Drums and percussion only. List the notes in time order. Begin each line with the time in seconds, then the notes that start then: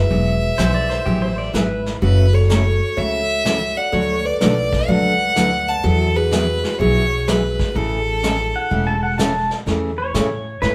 0.11 brush sweep, kick
0.58 snare, hi-hat pedal
0.91 snare
1.06 brush sweep, kick
1.54 snare, hi-hat pedal
1.86 snare
2.02 brush sweep, kick
2.50 snare, hi-hat pedal
2.98 brush sweep, kick
3.46 snare, hi-hat pedal
3.93 brush sweep, kick
4.41 snare, hi-hat pedal
4.73 kick, snare
4.89 brush sweep, kick
5.36 snare, hi-hat pedal
5.84 brush sweep, kick
6.32 snare, hi-hat pedal
6.64 snare
6.80 brush sweep, kick
7.28 snare, hi-hat pedal
7.59 kick, snare
7.76 brush sweep, kick
8.23 snare, hi-hat pedal
8.71 brush sweep, kick
9.19 snare, hi-hat pedal
9.51 snare
9.67 brush sweep, kick, snare
10.14 kick, snare, hi-hat pedal
10.62 brush sweep, kick, snare